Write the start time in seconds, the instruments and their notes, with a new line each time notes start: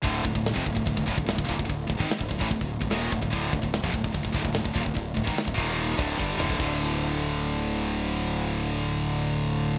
0.02 fingered electric bass D1, distorted electric guitar D2 A2 D3, kick, open hi-hat
0.24 fingered electric bass D1, distorted electric guitar D2 A2, kick
0.35 fingered electric bass D1, distorted electric guitar D2 A2, kick
0.46 snare, open hi-hat
0.53 fingered electric bass F1, distorted electric guitar F2 C3, kick
0.66 fingered electric bass D1, distorted electric guitar D2 A2, kick
0.75 fingered electric bass D1, distorted electric guitar D2 A2, kick
0.85 fingered electric bass D1, distorted electric guitar D2 A2, kick, open hi-hat
0.97 fingered electric bass D1, distorted electric guitar D2 A2, kick
1.06 fingered electric bass D1, distorted electric guitar D2 A2, kick
1.17 fingered electric bass D1, distorted electric guitar D2 A2, kick
1.26 fingered electric bass D1, distorted electric guitar D2 A2, snare, open hi-hat
1.35 fingered electric bass D1, distorted electric guitar D2 A2, kick
1.44 distorted electric guitar D#2 A#2
1.49 fingered electric bass D#1, overdriven electric guitar D#2, distorted electric guitar D#2 A#2, kick
1.54 distorted electric guitar D2 A2
1.59 fingered electric bass D1, overdriven electric guitar D2, distorted electric guitar D2 A2, kick
1.65 distorted electric guitar D2 A2
1.69 fingered electric bass D1, overdriven electric guitar D2, distorted electric guitar D2 A2, kick, open hi-hat
1.87 fingered electric bass D1, distorted electric guitar D2 A2, kick
1.97 fingered electric bass G#1, distorted electric guitar G#2 D#3, kick
2.09 muted distorted electric guitar stroke, muted fingered electric bass stroke, muted overdriven electric guitar stroke, snare, open hi-hat
2.19 fingered electric bass D1, distorted electric guitar D2 A2, kick
2.28 fingered electric bass D1, distorted electric guitar D2 A2, kick
2.39 fingered electric bass A1, distorted electric guitar A2 E3, kick
2.49 fingered electric bass D1, distorted electric guitar D2 A2, kick, open hi-hat
2.61 fingered electric bass D1, distorted electric guitar D2 A2, kick
2.81 fingered electric bass D1, distorted electric guitar D2 A2, kick
2.90 fingered electric bass D#1, distorted electric guitar D#2 A#2 D#3, snare, open hi-hat
3.12 fingered electric bass D1, distorted electric guitar D2 A2, kick
3.22 fingered electric bass D1, distorted electric guitar D2 A2, kick
3.30 fingered electric bass D1, distorted electric guitar D2 A2 D3, kick, open hi-hat
3.51 fingered electric bass D1, distorted electric guitar D2 A2, kick
3.62 fingered electric bass D1, distorted electric guitar D2 A2, kick
3.73 snare, open hi-hat
3.83 fingered electric bass F1, distorted electric guitar F2 C3, kick
3.93 fingered electric bass D1, distorted electric guitar D2 A2, kick
4.04 fingered electric bass D1, distorted electric guitar D2 A2, kick
4.12 fingered electric bass D1, distorted electric guitar D2 A2, kick, open hi-hat
4.23 fingered electric bass D1, distorted electric guitar D2 A2, kick
4.32 fingered electric bass D1, distorted electric guitar D2 A2, kick
4.36 overdriven electric guitar D2
4.42 fingered electric bass D1, distorted electric guitar D2 A2, kick
4.48 overdriven electric guitar D2 A2
4.52 fingered electric bass D1, distorted electric guitar D2 A2, snare, open hi-hat
4.57 overdriven electric guitar D2 A2
4.64 fingered electric bass D1, distorted electric guitar D2 A2, kick
4.73 fingered electric bass D#1, distorted electric guitar D#2 A#2, kick
4.84 fingered electric bass D1, distorted electric guitar D2 A2, kick
4.94 fingered electric bass D1, distorted electric guitar D2 A2, kick, open hi-hat
5.14 fingered electric bass D1, distorted electric guitar D2 A2, kick
5.24 fingered electric bass G#1, distorted electric guitar G#2 D#3, kick
5.36 muted fingered electric bass stroke, muted distorted electric guitar stroke, muted overdriven electric guitar stroke, snare, open hi-hat
5.45 fingered electric bass D1, distorted electric guitar D2 A2, kick
5.49 overdriven electric guitar A2
5.54 distorted electric guitar D#2 A#2 D#3
5.58 fingered electric bass D#1, kick
5.79 open hi-hat
5.96 fingered electric bass D1, distorted electric guitar D2 A2 D3, kick
6.16 fingered electric bass G1, distorted electric guitar G2 D3 G3, kick
6.36 fingered electric bass D1, distorted electric guitar D2 A2 D3, mid tom
6.50 kick
6.57 fingered electric bass D1, distorted electric guitar D2 A2, kick, crash
6.61 distorted electric guitar D3